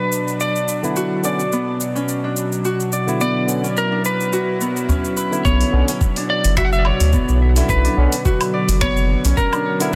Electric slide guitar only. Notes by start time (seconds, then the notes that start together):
Already playing: B4
0.41 D5
3.21 D5
3.78 A#4
4.06 B4
5.45 C#5
6.30 D5
6.58 E5
6.65 F#5
6.73 E5
6.79 D5
6.86 C#5
7.70 B4
8.82 C#5
9.37 A#4